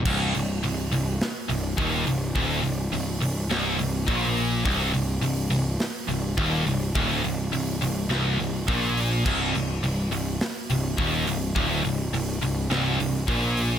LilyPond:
<<
  \new Staff \with { instrumentName = "Distorted electric guitar" } { \clef bass \time 4/4 \key c \minor \tempo 4 = 104 c,8 c,8 c,8 c,8 r8 c,8 ees,8 c,8 | d,8 c,8 c,8 c,8 c,8 c,8 bes,4 | c,8 c,8 c,8 c,8 r8 c,8 ees,8 c,8 | d,8 c,8 c,8 c,8 c,8 c,8 bes,4 |
c,8 c,8 c,8 c,8 r8 c,8 ees,8 c,8 | d,8 c,8 c,8 c,8 c,8 c,8 bes,4 | }
  \new Staff \with { instrumentName = "Picked electric bass" } { \clef bass \time 4/4 \key c \minor c,,8 c,,8 c,,8 c,,8 r8 c,,8 ees,,8 c,,8 | d,,8 c,,8 c,,8 c,,8 c,,8 c,,8 bes,,4 | c,,8 c,,8 c,,8 c,,8 r8 c,,8 ees,,8 c,,8 | d,,8 c,,8 c,,8 c,,8 c,,8 c,,8 bes,,4 |
c,,8 c,,8 c,,8 c,,8 r8 c,,8 ees,,8 c,,8 | d,,8 c,,8 c,,8 c,,8 c,,8 c,,8 bes,,4 | }
  \new DrumStaff \with { instrumentName = "Drums" } \drummode { \time 4/4 <cymc bd>8 hho8 hho8 hho8 <hho sn>8 hho8 <hho bd>8 hho8 | <hho bd>8 hho8 hho8 hho8 <hho sn>8 hho8 <hho bd>8 hho8 | <hho bd>8 hho8 hho8 hho8 <hho sn>8 hho8 <hho bd>8 hho8 | <hho bd>8 hho8 hho8 hho8 <hho sn>8 hho8 <hho bd>8 hho8 |
<cymc bd>8 hho8 hho8 hho8 <hho sn>8 hho8 <hho bd>8 hho8 | <hho bd>8 hho8 hho8 hho8 <hho sn>8 hho8 <hho bd>8 hho8 | }
>>